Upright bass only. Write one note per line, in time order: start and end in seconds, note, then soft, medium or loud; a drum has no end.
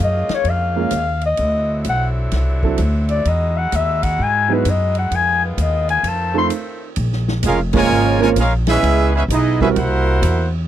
0.00 0.28 F#2 medium
0.29 muted upright bass stroke soft
0.44 0.90 F2 medium
0.91 1.37 D#2 medium
1.39 1.84 D2 medium
1.85 2.31 B1 medium
2.32 2.77 C2 medium
2.79 3.24 D2 medium
3.26 3.71 E2 medium
3.73 4.17 D#2 medium
4.19 4.64 G#2 medium
4.65 5.10 F#2 medium
5.11 5.57 F2 medium
5.58 6.03 D#2 medium
6.03 6.49 F2 medium
6.97 7.42 A#1 loud
7.44 7.89 F1 loud
7.90 8.35 G#1 medium
8.36 8.82 A#1 medium
8.83 9.28 C#2 medium
9.28 9.74 B1 medium
9.76 10.21 C2 medium
10.22 10.68 E2 loud